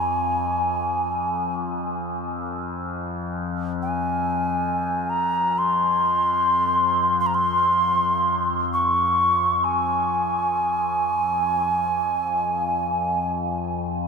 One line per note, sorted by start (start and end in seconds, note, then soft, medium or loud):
0.00 11.69 F2 medium
0.00 1.56 G#5 medium
3.82 5.11 G#5 medium
5.10 5.60 A#5 medium
5.58 7.19 C6 medium
7.20 7.28 C6 medium
7.26 7.36 A#5 medium
7.34 8.47 C6 medium
8.73 9.66 C#6 medium
9.64 13.32 G#5 medium
11.70 14.08 F2 medium